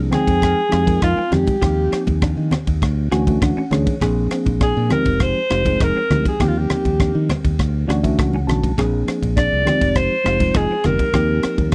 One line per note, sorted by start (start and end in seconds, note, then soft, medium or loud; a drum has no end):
0.00 0.10 C2 medium
0.00 0.12 A#3 medium
0.00 0.12 D4 medium
0.00 0.12 G#4 medium
0.11 0.60 F3 medium
0.11 0.60 G#3 medium
0.11 0.60 C4 medium
0.11 0.38 C4 medium
0.11 0.60 D#4 medium
0.11 0.99 G#4 loud
0.11 0.60 G5 medium
0.11 muted fingered electric bass stroke soft
0.11 cross-stick medium
0.11 ride medium
0.11 low conga medium
0.28 0.53 F2 medium
0.28 kick medium
0.28 ride medium
0.42 kick medium
0.42 cross-stick medium
0.42 ride medium
0.69 0.98 F2 medium
0.69 0.82 F3 medium
0.69 0.82 G#3 medium
0.69 0.83 C4 medium
0.69 0.82 D#4 medium
0.69 0.98 F4 medium
0.69 0.82 G4 medium
0.69 cross-stick medium
0.69 ride medium
0.86 1.20 F3 medium
0.86 1.20 G#3 medium
0.86 1.21 C4 medium
0.86 1.21 D#4 medium
0.86 1.21 A#4 medium
0.86 kick medium
0.86 ride medium
0.86 high conga medium
1.02 1.15 F2 medium
1.02 1.16 D#4 medium
1.02 1.35 F4 medium
1.02 kick loud
1.02 cross-stick medium
1.02 ride medium
1.17 1.44 C4 medium
1.17 muted fingered electric bass stroke soft
1.31 1.45 F2 medium
1.31 1.54 F3 medium
1.31 1.54 G#3 medium
1.31 1.55 C4 medium
1.31 1.55 D#4 medium
1.31 1.55 G4 medium
1.31 2.23 G4 medium
1.31 cross-stick medium
1.31 ride medium
1.31 low conga medium
1.47 kick medium
1.47 ride medium
1.47 high conga medium
1.61 1.88 D#2 medium
1.61 2.52 F3 medium
1.61 2.52 A#3 medium
1.61 2.52 C4 medium
1.61 2.52 D#4 medium
1.61 2.52 G4 medium
1.61 1.88 G4 medium
1.61 kick medium
1.61 cross-stick medium
1.61 ride medium
1.92 2.18 C4 medium
1.92 muted fingered electric bass stroke soft
1.92 cross-stick medium
1.92 ride medium
2.07 2.33 D#2 medium
2.07 kick medium
2.07 ride soft
2.07 high conga medium
2.22 2.48 D4 medium
2.22 kick loud
2.22 cross-stick medium
2.22 ride medium
2.37 2.50 D#3 medium
2.51 2.78 C4 medium
2.51 muted fingered electric bass stroke soft
2.51 cross-stick medium
2.51 ride medium
2.51 low conga medium
2.67 2.80 D#2 medium
2.67 kick medium
2.67 ride medium
2.82 3.08 D2 medium
2.82 kick medium
2.82 cross-stick medium
2.82 ride medium
3.11 3.37 D2 medium
3.11 3.23 E3 loud
3.11 3.23 A3 medium
3.11 3.23 C#4 medium
3.11 3.23 D4 medium
3.11 3.38 F#4 medium
3.11 3.23 F#4 loud
3.11 3.40 G#5 medium
3.11 cross-stick medium
3.11 ride medium
3.27 3.61 E3 medium
3.27 3.61 A3 medium
3.27 3.61 C#4 medium
3.27 3.61 D4 medium
3.27 3.61 F#4 medium
3.27 kick medium
3.27 ride medium
3.27 high conga medium
3.42 3.55 D2 medium
3.42 3.55 D4 medium
3.42 3.70 F#5 medium
3.42 kick loud
3.42 cross-stick medium
3.42 ride medium
3.57 3.83 C#4 medium
3.57 muted fingered electric bass stroke soft
3.71 3.85 D2 medium
3.71 3.94 E3 medium
3.71 3.94 A3 medium
3.71 3.94 C#4 medium
3.71 3.94 D4 medium
3.71 3.94 G#4 medium
3.71 3.99 C#5 medium
3.71 cross-stick medium
3.71 ride medium
3.71 low conga medium
3.86 kick medium
3.86 ride medium
3.86 high conga medium
4.01 4.27 A#1 loud
4.01 4.88 F3 medium
4.01 4.91 A#3 medium
4.01 4.89 C4 medium
4.01 4.91 D4 medium
4.01 4.28 G#4 medium
4.01 4.91 G#4 loud
4.01 kick medium
4.01 cross-stick medium
4.01 ride medium
4.31 4.57 C4 medium
4.31 cross-stick medium
4.31 ride medium
4.46 4.72 A#1 medium
4.46 kick medium
4.46 ride medium
4.46 high conga medium
4.61 4.87 D4 medium
4.61 4.90 G#4 medium
4.61 kick loud
4.61 cross-stick medium
4.61 ride medium
4.77 4.89 A#2 medium
4.89 5.38 F3 medium
4.89 5.38 G#3 medium
4.89 5.38 C4 medium
4.89 5.17 C4 medium
4.89 5.39 D#4 medium
4.89 5.39 G4 medium
4.89 5.23 A#4 medium
4.89 muted fingered electric bass stroke soft
4.89 cross-stick medium
4.89 ride medium
4.89 low conga medium
5.05 5.32 F1 medium
5.05 kick medium
5.05 ride medium
5.20 5.84 C5 loud
5.20 kick medium
5.20 cross-stick medium
5.20 ride medium
5.50 5.76 F1 medium
5.50 5.62 F3 medium
5.50 5.62 G#3 medium
5.50 5.62 C4 medium
5.50 5.62 D#4 medium
5.50 5.77 F4 medium
5.50 5.62 G4 medium
5.50 cross-stick medium
5.50 ride medium
5.65 6.00 F3 medium
5.65 6.00 G#3 medium
5.65 6.00 C4 medium
5.65 6.00 D#4 medium
5.65 6.00 G#4 medium
5.65 kick medium
5.65 ride medium
5.65 high conga medium
5.80 5.94 F1 medium
5.80 5.94 D#4 medium
5.80 6.27 A#4 medium
5.80 kick loud
5.80 cross-stick medium
5.80 ride medium
5.96 6.22 C4 medium
6.10 6.23 D2 medium
6.10 6.33 F3 medium
6.10 6.33 G#3 medium
6.10 6.33 C4 medium
6.10 6.33 D#4 medium
6.10 6.33 G4 medium
6.10 cross-stick medium
6.10 ride medium
6.10 low conga medium
6.25 6.45 G#4 medium
6.25 kick medium
6.25 ride medium
6.25 high conga medium
6.40 6.66 D#2 medium
6.40 7.29 F3 medium
6.40 7.30 A#3 medium
6.40 7.29 C4 medium
6.40 7.29 D#4 medium
6.40 7.29 G4 medium
6.40 6.66 G4 medium
6.40 6.50 G4 medium
6.40 kick medium
6.40 cross-stick medium
6.40 ride medium
6.40 low conga medium
6.48 6.59 F4 medium
6.58 7.31 G4 medium
6.70 6.96 C4 medium
6.70 muted fingered electric bass stroke soft
6.70 cross-stick medium
6.70 ride medium
6.70 low conga medium
6.85 7.11 D#2 medium
6.85 kick medium
6.85 ride soft
6.85 high conga medium
7.00 7.26 D4 medium
7.00 kick loud
7.00 cross-stick medium
7.00 ride medium
7.15 7.27 D#3 medium
7.29 7.56 C4 medium
7.29 muted fingered electric bass stroke soft
7.29 cross-stick medium
7.29 ride medium
7.29 high conga medium
7.29 low conga medium
7.45 7.57 D#2 medium
7.45 kick medium
7.45 ride medium
7.59 7.85 D2 medium
7.59 kick medium
7.59 cross-stick medium
7.59 ride medium
7.87 8.15 D2 medium
7.87 7.99 E3 medium
7.87 8.00 A3 medium
7.87 8.00 C#4 medium
7.87 8.00 D4 medium
7.87 8.00 F#4 medium
7.87 8.15 F#4 medium
7.87 8.03 D5 medium
7.87 cross-stick medium
7.87 ride medium
8.03 8.37 E3 medium
8.03 8.37 A3 medium
8.03 8.37 C#4 medium
8.03 8.37 D4 medium
8.03 8.37 F#4 medium
8.03 8.17 E5 medium
8.03 kick medium
8.03 ride medium
8.03 high conga medium
8.18 8.45 C#2 medium
8.18 8.32 D4 medium
8.18 8.46 F#5 medium
8.18 kick loud
8.18 cross-stick medium
8.18 ride medium
8.33 8.60 C#4 medium
8.33 high conga medium
8.47 8.75 B1 medium
8.47 8.70 E3 medium
8.47 8.70 A3 medium
8.47 8.70 C#4 medium
8.47 8.71 D4 medium
8.47 8.70 F#4 medium
8.47 8.75 A5 medium
8.47 cross-stick medium
8.47 ride medium
8.47 low conga medium
8.63 kick medium
8.63 ride medium
8.63 high conga medium
8.78 9.03 A#1 medium
8.78 9.64 F3 medium
8.78 9.67 A#3 medium
8.78 9.65 C4 medium
8.78 9.67 D4 medium
8.78 9.67 G#4 medium
8.78 9.04 G#4 medium
8.78 kick medium
8.78 cross-stick medium
8.78 ride medium
9.08 9.34 C4 medium
9.08 cross-stick medium
9.08 ride medium
9.23 9.48 A#1 medium
9.23 kick medium
9.23 ride medium
9.37 9.63 D4 medium
9.37 9.98 D5 loud
9.37 kick loud
9.37 cross-stick medium
9.37 ride medium
9.53 9.65 C2 medium
9.65 10.13 F3 medium
9.65 10.13 G#3 medium
9.65 10.14 C4 medium
9.65 9.93 C4 medium
9.65 10.14 D#4 medium
9.65 10.14 G4 medium
9.65 muted fingered electric bass stroke soft
9.65 cross-stick medium
9.65 ride medium
9.65 low conga medium
9.81 10.07 F1 medium
9.81 kick medium
9.81 ride medium
9.95 10.58 C5 loud
9.95 kick medium
9.95 cross-stick medium
9.95 ride medium
10.24 10.51 F1 medium
10.24 10.36 F3 medium
10.24 10.36 G#3 medium
10.24 10.37 C4 medium
10.24 10.36 D#4 medium
10.24 10.52 F4 medium
10.24 10.37 G4 medium
10.24 cross-stick medium
10.24 ride medium
10.39 10.73 F3 medium
10.39 10.73 G#3 medium
10.39 10.74 C4 medium
10.39 10.74 D#4 medium
10.39 10.74 F4 medium
10.39 kick medium
10.39 ride medium
10.39 high conga medium
10.54 10.68 F1 medium
10.54 10.69 D#4 medium
10.54 10.87 G#4 medium
10.54 kick loud
10.54 cross-stick medium
10.54 ride medium
10.71 10.97 C4 medium
10.84 10.98 F1 medium
10.84 11.07 F3 medium
10.84 11.07 G#3 medium
10.84 11.07 C4 medium
10.84 11.07 D#4 medium
10.84 11.07 G4 medium
10.84 11.74 A#4 medium
10.84 cross-stick medium
10.84 ride medium
10.84 low conga medium
10.99 kick medium
10.99 ride medium
10.99 high conga medium
11.13 11.39 D#2 medium
11.13 11.75 F3 medium
11.13 11.75 A#3 medium
11.13 11.75 C4 medium
11.13 11.75 D#4 medium
11.13 11.75 G4 medium
11.13 11.40 G4 medium
11.13 kick medium
11.13 cross-stick medium
11.13 ride medium
11.43 11.70 C4 medium
11.43 muted fingered electric bass stroke soft
11.43 cross-stick medium
11.43 ride medium
11.58 11.75 D#2 medium
11.58 kick medium
11.58 ride soft
11.58 high conga medium
11.72 ride medium